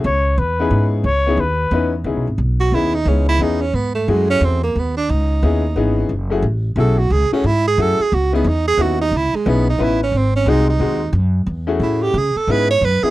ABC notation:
X:1
M:3/4
L:1/8
Q:"Swing" 1/4=178
K:C#m
V:1 name="Trumpet"
c2 B3 z | c2 B3 z | z6 | z6 |
z6 | z6 | z6 | z6 |
z6 | z6 | z6 | z6 |
z6 |]
V:2 name="Tenor saxophone"
z6 | z6 | z3 F E D | C E D C B, A, |
G, C ^B, ^A, =B, =D | D6 | z4 A F | G C E G A G |
F B, D G F D | E G, B, D E C | ^B, C D D3 | z4 E =G |
G A B c B G |]
V:3 name="Upright piano"
z3 [B,CDEG]3 | z [B,CDEG] z2 [B,CDEB] z | [B,CDEG] z3 [B,CDEG] z | [B,CDEG]2 [B,CDEG] z3 |
[A,CEFG]3 z3 | z2 [B,CDEG] z [E,B,CDG]2 | z [A,CEFG] z2 [A,CEFG] z | z [A,CEFG] z2 [A,CEFG] z |
z [B,CDEG] z2 [B,CDEF] z | z2 [B,CDEG] z [B,CDEB] z | z2 [G,^B,DFG] z [G,B,DFG] z | z3 [A,CEFG]3 |
z2 [B,CDEG] z2 [B,CDEG] |]
V:4 name="Upright bass" clef=bass
C,,2 E,,2 G,,2 | C,,2 D,,2 E,,2 | (3C,, B,,, G,,, B,,,2 D,,2 | C,,2 E,,2 G,,2 |
F,,2 E,,2 D,,2 | C,,2 D,,2 G,,,2 | F,,,2 A,,,2 B,,,2 | C,, z G,,2 F,, z |
C,,2 E,,2 D,,2 | C,, z B,,,2 A,,,2 | G,,,2 ^B,,,2 D,,2 | F,,2 E,,2 A,,2 |
C, z G,,2 F,, z |]